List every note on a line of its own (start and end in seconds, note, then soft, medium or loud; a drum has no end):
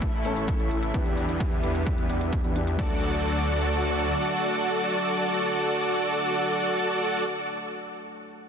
0.00 0.23 A1 medium
0.00 0.22 A2 medium
0.00 0.92 C#3 medium
0.00 0.22 E3 medium
0.00 0.92 E3 medium
0.00 0.22 A3 medium
0.00 0.92 A3 medium
0.00 0.23 C#4 medium
0.00 2.75 E4 medium
0.00 0.20 E4 medium
0.00 0.23 A4 medium
0.00 kick loud
0.00 closed hi-hat medium
0.24 0.57 A1 medium
0.24 0.36 A2 medium
0.24 0.36 E3 medium
0.24 0.36 A3 medium
0.24 0.36 C#4 medium
0.24 0.54 E4 medium
0.24 0.54 A4 medium
0.24 0.37 A4 loud
0.24 0.54 C#5 medium
0.24 closed hi-hat medium
0.37 closed hi-hat soft
0.48 kick loud
0.48 closed hi-hat medium
0.60 0.92 A1 medium
0.60 0.78 E4 medium
0.60 0.78 A4 medium
0.60 0.78 C#5 loud
0.60 closed hi-hat soft
0.71 closed hi-hat medium
0.83 closed hi-hat medium
0.93 1.27 E2 loud
0.93 2.77 D3 medium
0.93 2.06 E3 medium
0.93 2.77 G3 medium
0.93 2.07 B3 medium
0.93 2.77 B3 medium
0.93 1.26 B3 medium
0.93 1.26 D4 medium
0.93 2.07 D4 medium
0.93 1.26 E4 medium
0.93 1.26 G4 medium
0.93 2.07 G4 medium
0.93 1.26 D5 loud
0.93 kick loud
0.93 closed hi-hat medium
1.06 closed hi-hat soft
1.17 closed hi-hat medium
1.29 1.61 E2 medium
1.29 1.61 B3 medium
1.29 1.61 D4 medium
1.29 1.61 E4 medium
1.29 1.61 G4 medium
1.29 1.61 E5 loud
1.29 closed hi-hat medium
1.40 kick loud
1.40 closed hi-hat medium
1.52 closed hi-hat soft
1.63 1.84 E2 medium
1.63 1.82 B3 medium
1.63 1.82 D4 medium
1.63 1.82 E4 medium
1.63 1.82 G4 medium
1.63 1.82 E5 loud
1.63 closed hi-hat medium
1.75 closed hi-hat medium
1.87 2.07 E2 medium
1.87 2.05 B3 medium
1.87 2.05 G4 medium
1.87 kick loud
1.87 closed hi-hat medium
1.98 closed hi-hat soft
2.10 2.42 E2 medium
2.10 2.39 B3 medium
2.10 2.39 D4 medium
2.10 2.39 E4 medium
2.10 2.39 G4 medium
2.10 2.39 D5 medium
2.10 closed hi-hat medium
2.21 closed hi-hat soft
2.33 kick loud
2.33 closed hi-hat medium
2.44 2.77 E2 medium
2.44 2.62 B3 medium
2.44 2.62 D4 medium
2.44 2.62 E4 medium
2.44 2.62 G4 medium
2.44 2.62 D5 loud
2.44 closed hi-hat soft
2.55 2.76 E3 medium
2.55 2.76 B3 medium
2.55 2.76 D4 medium
2.55 2.76 G4 medium
2.55 closed hi-hat medium
2.67 closed hi-hat medium
2.77 4.13 D2 medium
2.77 7.24 D3 medium
2.77 7.48 F#3 medium
2.77 7.24 F#3 medium
2.77 7.49 A3 medium
2.77 7.24 A3 medium
2.77 7.50 D4 medium
2.77 7.24 F#4 medium
2.77 7.24 A4 medium
2.77 7.51 A4 medium
2.77 7.24 D5 medium
2.77 kick loud